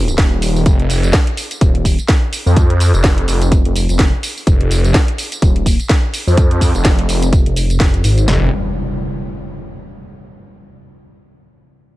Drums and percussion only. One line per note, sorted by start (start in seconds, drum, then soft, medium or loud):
0.08 closed hi-hat soft
0.08 tambourine soft
0.18 kick loud
0.18 snare loud
0.18 closed hi-hat medium
0.18 tambourine soft
0.42 open hi-hat loud
0.42 tambourine medium
0.56 tambourine soft
0.66 kick loud
0.66 closed hi-hat medium
0.66 tambourine soft
0.80 closed hi-hat soft
0.90 open hi-hat loud
0.90 tambourine medium
1.03 closed hi-hat soft
1.03 tambourine soft
1.13 kick loud
1.13 snare loud
1.13 closed hi-hat medium
1.13 tambourine soft
1.27 closed hi-hat medium
1.37 open hi-hat loud
1.37 tambourine medium
1.51 closed hi-hat medium
1.51 tambourine soft
1.61 kick loud
1.61 closed hi-hat medium
1.61 tambourine soft
1.75 closed hi-hat soft
1.85 kick medium
1.85 open hi-hat loud
1.85 tambourine medium
1.99 closed hi-hat soft
1.99 tambourine soft
2.08 kick loud
2.08 snare loud
2.08 closed hi-hat medium
2.08 tambourine soft
2.33 open hi-hat loud
2.33 tambourine medium
2.47 tambourine soft
2.56 kick loud
2.56 closed hi-hat medium
2.56 tambourine soft
2.70 closed hi-hat soft
2.80 open hi-hat loud
2.80 tambourine medium
2.94 closed hi-hat soft
2.94 tambourine soft
3.04 kick loud
3.04 snare loud
3.04 closed hi-hat medium
3.04 tambourine soft
3.18 closed hi-hat medium
3.28 open hi-hat loud
3.28 tambourine medium
3.42 closed hi-hat medium
3.42 tambourine soft
3.52 kick loud
3.52 closed hi-hat medium
3.52 tambourine soft
3.65 closed hi-hat soft
3.76 open hi-hat loud
3.76 tambourine medium
3.89 closed hi-hat soft
3.89 tambourine soft
3.99 kick loud
3.99 snare loud
3.99 closed hi-hat medium
3.99 tambourine soft
4.23 open hi-hat loud
4.23 tambourine medium
4.37 tambourine soft
4.47 kick loud
4.47 closed hi-hat medium
4.47 tambourine soft
4.61 closed hi-hat soft
4.71 open hi-hat loud
4.71 tambourine medium
4.84 closed hi-hat soft
4.84 tambourine soft
4.94 kick loud
4.94 snare loud
4.94 closed hi-hat medium
4.94 tambourine soft
5.08 closed hi-hat medium
5.18 open hi-hat loud
5.18 tambourine medium
5.32 closed hi-hat medium
5.32 tambourine soft
5.42 kick loud
5.42 closed hi-hat medium
5.42 tambourine soft
5.56 closed hi-hat soft
5.66 kick medium
5.66 open hi-hat loud
5.66 tambourine medium
5.80 closed hi-hat soft
5.80 tambourine soft
5.89 kick loud
5.89 snare loud
5.89 closed hi-hat medium
5.89 tambourine soft
6.14 open hi-hat loud
6.14 tambourine medium
6.28 tambourine soft
6.37 kick loud
6.37 closed hi-hat medium
6.37 tambourine soft
6.51 closed hi-hat soft
6.61 kick medium
6.61 open hi-hat loud
6.61 tambourine medium
6.75 closed hi-hat soft
6.75 tambourine soft
6.85 kick loud
6.85 snare loud
6.85 closed hi-hat medium
6.85 tambourine soft
6.99 closed hi-hat medium
7.09 open hi-hat loud
7.09 tambourine medium
7.22 closed hi-hat medium
7.22 tambourine soft
7.33 kick loud
7.33 closed hi-hat medium
7.33 tambourine soft
7.46 closed hi-hat soft
7.56 open hi-hat loud
7.56 tambourine medium
7.70 closed hi-hat soft
7.70 tambourine soft
7.80 kick loud
7.80 snare loud
7.80 closed hi-hat medium
7.80 tambourine soft
7.94 closed hi-hat soft
8.04 open hi-hat loud
8.04 tambourine medium
8.18 closed hi-hat soft
8.18 tambourine soft
8.28 snare loud